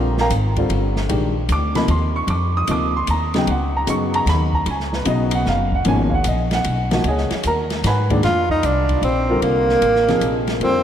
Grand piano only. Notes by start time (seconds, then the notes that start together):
Already playing: D3 G3 C4 F4 A#4 F5 G5 A#5
0.20 A#4 F5 G5 A#5
0.57 D3 G3 C4 F4
1.09 D#3 G#3 D4 G4
1.52 D6
1.75 C3 F3 A#3 D#4 B5
1.91 C6
2.16 C#6
2.30 D6
2.57 D#6
2.68 C3 F3 A#3 D#4 D6
2.97 C6
3.10 A#5
3.34 C#3 F#3 B3 D#4 G5
3.51 F#5
3.77 A#5
3.87 C#3 F#3 B3 D#4 C#6
4.15 A#5
4.29 B5
4.55 A#5
4.70 G#5
4.95 B4
5.05 C#3 F#3 B3 D#4
5.10 D#5
5.35 F#5
5.49 F5
5.75 F#5
5.85 B2 F3 A#3 C#4 G#5
6.10 F5
6.14 F#5
6.28 D#5
6.54 F#5
6.91 F3 A#3 D#4 F#4
7.08 G#4 C#5 D#5 G#5
7.47 A#4 A#5
7.87 B4 F#5 G#5 B5
8.10 A#2 D#3 G#3 D4
9.29 D3 G3 C4 F4 A#4
10.08 C3 F3 A#3 D#4 G#4
10.61 D3 G3 C4 F4 A#4